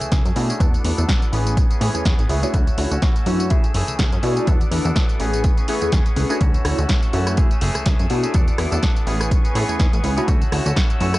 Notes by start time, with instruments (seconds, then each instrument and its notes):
Already playing: clean electric guitar E3 A3 C#4 G#4, violin section A3 G#5 E6
0.01 analog synth bass C#2, closed hi-hat, tambourine
0.11 analog synth bass C#2, clean electric guitar E3 A3 G#4, kick, snare, closed hi-hat, tambourine
0.25 analog synth bass F#2, clean electric guitar A3 C#4 G#4, closed hi-hat, tambourine
0.36 analog synth bass B2, analog polysynth A3 D4 E4 F#4 D5, open hi-hat
0.49 clean electric guitar A3 C#4 G#4, closed hi-hat, tambourine
0.60 analog synth bass E2, clean electric guitar F#3 B3 D4 A4, violin section A4 F#5 D6, kick, closed hi-hat, tambourine
0.73 clean electric guitar B3 D4 A4, closed hi-hat, tambourine
0.84 analog synth bass E2, analog polysynth A3 D4 E4 F#4 B4, open hi-hat
0.97 analog synth bass E2, clean electric guitar B3 D4 A4, tambourine
1.08 clean electric guitar F#3 B3 D4 A4, kick, snare, closed hi-hat, tambourine
1.21 clean electric guitar B3 D4 A4, closed hi-hat, tambourine
1.32 analog synth bass A1, clean electric guitar E3 B3 C#4 G#4, analog polysynth A3 C#4 E4 G#4 B4, violin section B4 G#5 C#6, open hi-hat
1.47 closed hi-hat, tambourine
1.57 kick, closed hi-hat, tambourine
1.70 clean electric guitar B3 C#4 G#4, closed hi-hat, tambourine
1.80 analog synth bass A2, clean electric guitar E3 B3 C#4 G#4, analog polysynth A3 C#4 E4 G#4 B4, open hi-hat
1.94 analog synth bass E2, analog polysynth A3 C#4 E4 G#4 C#5, closed hi-hat, tambourine
2.05 analog synth bass E2, clean electric guitar E3 B3 C#4 G#4, kick, snare, closed hi-hat, tambourine
2.19 analog synth bass A1, clean electric guitar B3 C#4 G#4, closed hi-hat, tambourine
2.29 analog synth bass C#2, analog polysynth A3 C#4 E4 G#4 B4, open hi-hat
2.43 analog polysynth A3 D4 E4 F#4 C#5, clean electric guitar B3 C#4 G#4, closed hi-hat, tambourine
2.53 analog synth bass D2, clean electric guitar E3 A3 C#4 F#4, violin section C#5 F#5 E6, kick, closed hi-hat, tambourine
2.67 clean electric guitar A3 C#4 F#4, closed hi-hat, tambourine
2.78 analog synth bass D2, analog polysynth A3 D4 E4 F#4 C#5, open hi-hat
2.91 analog synth bass D2, clean electric guitar A3 C#4 F#4, closed hi-hat, tambourine
3.02 clean electric guitar E3 A3 C#4 F#4, kick, snare, closed hi-hat, tambourine
3.16 clean electric guitar A3 C#4 F#4, closed hi-hat, tambourine
3.26 analog synth bass F#2, clean electric guitar E3 A3 C#4 F#4, analog polysynth A3 D4 E4 F#4 C#5, open hi-hat
3.40 closed hi-hat, tambourine
3.50 clean electric guitar E3 A3 C#4 G#4, violin section A3 G#5, analog polysynth A3 E4 F#4 G#4 E5, kick, closed hi-hat, tambourine
3.64 clean electric guitar A3 C#4 G#4, closed hi-hat, tambourine
3.74 analog synth bass F#1, clean electric guitar E3 A3 C#4 G#4, open hi-hat
3.88 analog synth bass C#2, closed hi-hat, tambourine
3.99 analog synth bass C#2, clean electric guitar E3 A3 C#4 G#4, kick, snare, closed hi-hat, tambourine
4.12 analog synth bass F#2, clean electric guitar A3 C#4 G#4, closed hi-hat, tambourine
4.23 analog synth bass B2, analog polysynth A3 D4 E4 F#4 D5, open hi-hat
4.36 clean electric guitar A3 C#4 G#4, closed hi-hat, tambourine
4.47 analog synth bass E2, clean electric guitar F#3 B3 D4 A4, violin section F#5 D6, kick, closed hi-hat, tambourine
4.60 clean electric guitar B3 D4 A4, closed hi-hat, tambourine
4.71 analog synth bass E2, analog polysynth A3 D4 E4 F#4 B4, open hi-hat
4.84 analog synth bass E2, clean electric guitar B3 D4 A4, closed hi-hat, tambourine
4.95 clean electric guitar F#3 B3 D4 A4, kick, snare, closed hi-hat, tambourine
5.08 clean electric guitar B3 D4 A4, closed hi-hat, tambourine
5.19 analog synth bass A1, clean electric guitar E3 B3 C#4 G#4, analog polysynth A3 C#4 E4 G#4 B4, violin section B4 G#5 C#6, open hi-hat
5.33 closed hi-hat, tambourine
5.44 kick, closed hi-hat, tambourine
5.57 clean electric guitar B3 C#4 G#4, closed hi-hat, tambourine
5.68 clean electric guitar E3 B3 C#4 G#4, analog polysynth A3 C#4 E4 G#4 B4, open hi-hat
5.81 analog synth bass E2, analog polysynth A3 C#4 E4 G#4 C#5, closed hi-hat, tambourine
5.92 analog synth bass E2, clean electric guitar E3 C#4 G#4, kick, snare, closed hi-hat, tambourine
6.05 clean electric guitar B3 C#4 G#4, closed hi-hat, tambourine
6.16 analog synth bass C#2, analog polysynth A3 C#4 E4 G#4 B4, open hi-hat
6.29 analog polysynth A3 D4 E4 F#4 C#5, clean electric guitar B3 C#4 G#4, closed hi-hat, tambourine
6.40 analog synth bass D2, clean electric guitar E3 A3 C#4 F#4, violin section C#5 F#5 E6, kick, closed hi-hat, tambourine
6.54 closed hi-hat, tambourine
6.64 analog synth bass D2, analog polysynth A3 D4 E4 F#4 C#5, cross-stick, open hi-hat
6.78 analog synth bass D2, clean electric guitar A3 C#4 F#4, closed hi-hat, tambourine
6.89 clean electric guitar E3 A3 C#4 F#4, kick, snare, closed hi-hat, tambourine
7.02 clean electric guitar A3 C#4 F#4, closed hi-hat, tambourine
7.13 analog synth bass F#2, clean electric guitar E3 A3 C#4 F#4, analog polysynth A3 D4 E4 F#4 C#5, open hi-hat
7.27 cross-stick, closed hi-hat, tambourine
7.37 clean electric guitar E3 A3 C#4 G#4, analog polysynth A3 E4 F#4 G#4 E5, violin section A3 G#5 E6, kick, closed hi-hat, tambourine
7.51 clean electric guitar A3 C#4 G#4, closed hi-hat, tambourine
7.61 analog synth bass F#1, clean electric guitar E3 A3 C#4 G#4, open hi-hat
7.75 analog synth bass C#2, cross-stick, closed hi-hat, tambourine
7.86 analog synth bass C#2, clean electric guitar E3 G#4, kick, snare, closed hi-hat, tambourine
7.99 analog synth bass F#2, clean electric guitar A3 C#4 G#4, closed hi-hat, tambourine
8.10 analog synth bass B2, analog polysynth A3 D4 E4 F#4 D5, open hi-hat
8.23 clean electric guitar A3 C#4 G#4, closed hi-hat, tambourine
8.34 analog synth bass E2, clean electric guitar F#3 B3 D4 A4, violin section F#5 D6, kick, closed hi-hat, tambourine
8.47 clean electric guitar B3 D4 A4, closed hi-hat, tambourine
8.58 analog synth bass E2, analog polysynth A3 D4 E4 F#4 B4, cross-stick, open hi-hat
8.71 analog synth bass E2, clean electric guitar B3 D4 A4, closed hi-hat, tambourine
8.82 clean electric guitar F#3 B3 D4 A4, kick, snare, closed hi-hat, tambourine
8.96 clean electric guitar B3 D4 A4, closed hi-hat, tambourine
9.06 analog synth bass A1, clean electric guitar E3 B3 C#4 G#4, analog polysynth A3 C#4 E4 G#4 B4, violin section B4 G#5 C#6, open hi-hat
9.21 cross-stick, closed hi-hat, tambourine
9.31 kick, closed hi-hat, tambourine
9.44 clean electric guitar B3 C#4 G#4, closed hi-hat, tambourine
9.55 analog synth bass A2, clean electric guitar E3 B3 C#4 G#4, analog polysynth A3 C#4 E4 G#4 B4, open hi-hat
9.69 analog synth bass E2, analog polysynth A3 C#4 E4 G#4 C#5, closed hi-hat, tambourine
9.79 analog synth bass E2, clean electric guitar E3 B3 C#4 G#4, kick, snare, closed hi-hat, tambourine
9.92 analog synth bass A1, clean electric guitar B3 C#4 G#4, closed hi-hat, tambourine
10.03 analog synth bass C#2, analog polysynth A3 C#4 E4 G#4 B4, open hi-hat
10.17 analog polysynth A3 D4 E4 F#4 C#5, clean electric guitar B3 C#4 G#4, closed hi-hat, tambourine
10.27 analog synth bass D2, clean electric guitar E3 A3 C#4 F#4, violin section C#5 F#5 E6, kick, closed hi-hat, tambourine
10.41 clean electric guitar A3 C#4 F#4, closed hi-hat, tambourine
10.52 analog synth bass D2, analog polysynth A3 D4 E4 F#4 C#5, cross-stick, open hi-hat
10.65 analog synth bass D2, clean electric guitar A3 C#4 F#4, closed hi-hat, tambourine
10.76 clean electric guitar E3 A3 C#4 F#4, kick, snare, closed hi-hat, tambourine
10.89 clean electric guitar A3 C#4 F#4, closed hi-hat, tambourine
11.00 analog synth bass F#2, clean electric guitar E3 A3 C#4 F#4, analog polysynth A3 D4 E4 F#4 C#5, open hi-hat
11.14 cross-stick, closed hi-hat, tambourine